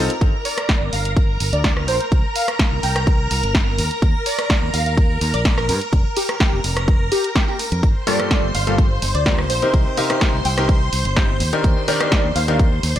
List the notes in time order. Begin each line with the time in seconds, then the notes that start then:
Already playing: A#4 A#5
0.10 closed hi-hat
0.21 G1 A#4 A#5, kick, closed hi-hat
0.45 D5, open hi-hat
0.58 cross-stick, closed hi-hat
0.69 kick, snare, closed hi-hat
0.81 G1
0.93 G1 F5, open hi-hat
1.05 F5, closed hi-hat
1.17 kick, closed hi-hat
1.40 G1, open hi-hat
1.53 D2 D5, closed hi-hat
1.64 D5, kick, snare, closed hi-hat
1.77 cross-stick
1.88 A#1 C5, open hi-hat
2.00 closed hi-hat
2.12 C2, kick, closed hi-hat
2.36 F5, open hi-hat
2.48 cross-stick, closed hi-hat
2.59 kick, snare, closed hi-hat
2.72 C2
2.83 C2 G5, open hi-hat
2.96 G5, cross-stick, closed hi-hat
3.07 kick, closed hi-hat
3.31 C2, open hi-hat
3.43 G1, closed hi-hat
3.55 kick, snare, closed hi-hat
3.78 D#2, open hi-hat
3.91 closed hi-hat
4.02 D#2, kick, closed hi-hat
4.26 D5, open hi-hat
4.39 cross-stick, closed hi-hat
4.50 kick, snare, closed hi-hat
4.62 D#2
4.74 D#2 F5, open hi-hat
4.86 F5, closed hi-hat
4.97 kick, closed hi-hat
5.21 D#2, open hi-hat
5.34 A#1 D5, closed hi-hat
5.45 D5, kick, snare, closed hi-hat
5.58 A#4, cross-stick
5.69 G2 A#4, open hi-hat
5.81 closed hi-hat
5.93 F1, kick, closed hi-hat
6.17 G4, open hi-hat
6.29 cross-stick, closed hi-hat
6.40 G4, kick, snare, closed hi-hat
6.53 F1
6.64 F1, open hi-hat
6.77 cross-stick, closed hi-hat
6.88 kick, closed hi-hat
7.12 G4, open hi-hat
7.24 closed hi-hat
7.36 G4, kick, snare, closed hi-hat
7.48 G4
7.59 open hi-hat
7.72 F2, closed hi-hat
7.83 G1 C5 C6, kick, closed hi-hat
8.07 G2 A#3 F4 G4 A4 D5, open hi-hat
8.19 G2 A#3 F4 G4 A4, cross-stick, closed hi-hat
8.31 A#3 G4 A4, kick, snare, closed hi-hat
8.43 G1
8.55 G1 F5, open hi-hat
8.67 G2 A#3 F4 G4 A4 F5, closed hi-hat
8.78 kick, closed hi-hat
9.02 G1, open hi-hat
9.15 D2 D5, closed hi-hat
9.26 G2 A#3 F4 G4 A#4 D5, kick, snare, closed hi-hat
9.38 cross-stick
9.50 A#1 C5, open hi-hat
9.62 C3 C4 D#4 G4 A#4, closed hi-hat
9.74 C2, kick, closed hi-hat
9.97 C3 C4 D#4 G4 A#4 F5, open hi-hat
10.10 C3 C4 D#4 G4 A#4, cross-stick, closed hi-hat
10.21 C3 A#4, kick, snare, closed hi-hat
10.34 C2
10.45 C2 G5, open hi-hat
10.58 C3 C4 D#4 G4 A#4 G5, cross-stick, closed hi-hat
10.69 kick, closed hi-hat
10.93 C2, open hi-hat
11.05 G1, closed hi-hat
11.16 C3 C4 D#4 G4 C5, kick, snare, closed hi-hat
11.40 D#2, open hi-hat
11.53 D#3 D4 D#4 G4 A#4, closed hi-hat
11.64 D#2, kick, closed hi-hat
11.88 D#3 D4 D#4 G4 A#4 D5, open hi-hat
12.00 D#3 D4 D#4 G4 A#4, cross-stick, closed hi-hat
12.12 D#3 D4 D#4 G4, kick, snare, closed hi-hat
12.24 D#2
12.36 D#2 F5, open hi-hat
12.48 D#3 D4 D#4 G4 A#4 F5, closed hi-hat
12.59 kick, closed hi-hat
12.83 D#2, open hi-hat
12.96 A#1 D5, closed hi-hat